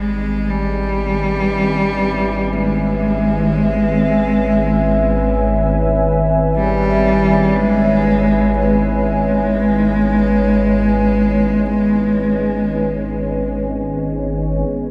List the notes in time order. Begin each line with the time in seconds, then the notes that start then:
Already playing: G#1 B4 C#5 G#5
0.00 G#3
0.21 E5
0.50 G3
2.53 G#3
6.56 G3
7.56 G#3
8.58 G#3
14.70 G#1 D#2